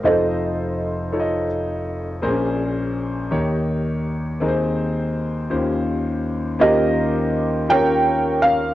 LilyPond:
<<
  \new Staff \with { instrumentName = "Felt piano" } { \time 6/8 \key ees \mixolydian \tempo 4. = 55 << { ees''2 r4 | r2. | r2. | ees''4. g''4 f''8 | } \\ { <a' c''>2 r4 | r2. | r2. | <g' bes'>4. <bes' des''>4. | } >> }
  \new Staff \with { instrumentName = "Grand piano" } { \time 6/8 \key ees \mixolydian <ees' f' a' c''>4. <ees' f' a' des'' ees''>4. | <c' des' aes' bes' c''>4. <ees' g' bes' des''>4. | <c' ees' aes' bes' c''>4. <des' f' g' c''>4. | <des' f' g' c''>4. <des' f' g' bes'>4. | }
  \new Staff \with { instrumentName = "Grand piano" } { \clef bass \time 6/8 \key ees \mixolydian <f,, f,>2. | <bes,, bes,>4. <ees, ees>4. | <ees, ees>4. <ees, ees>4. | <ees, ees>2. | }
>>